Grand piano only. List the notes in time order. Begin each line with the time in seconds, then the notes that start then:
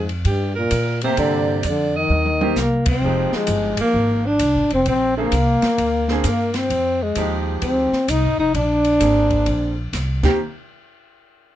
1.04 C3 A#3 C4 G4
2.42 D#3 A#3 C4 G4
3.04 F3 G#3 D#4 G4
5.17 D3 A#3 C4 G#4
6.10 D3 A#3 C4 G#4
7.17 F3 G#3 D#4 G4
9.00 D3 A#3 C4 G#4
10.24 D#3 A#3 C4 G4